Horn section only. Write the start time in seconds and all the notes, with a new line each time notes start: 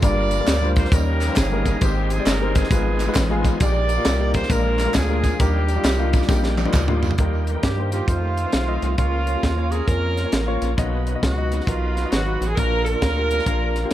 0.03 F4 A#4 D5
0.78 C5
0.93 C#4 G4 A#4
1.37 C#4 G#4
1.83 C4 D#4 G4
2.12 G#4
2.27 A#4
2.56 B3 F4 G#4
3.61 G4 A#4 D5
4.35 C5
4.51 D4 F4 A#4
4.96 D4 F4 G#4
5.40 A#3 D4 G4
7.64 G4
7.92 G4
8.08 A3 C4 F4
8.97 A#3 C#4 F4
9.71 C#4 F4 A#4
11.24 B3 D#4 F#4
11.68 B3 F4
12.13 B3 D#4 F#4
12.50 G#4
12.58 D4 F4 A#4
12.87 D4 F4 A#4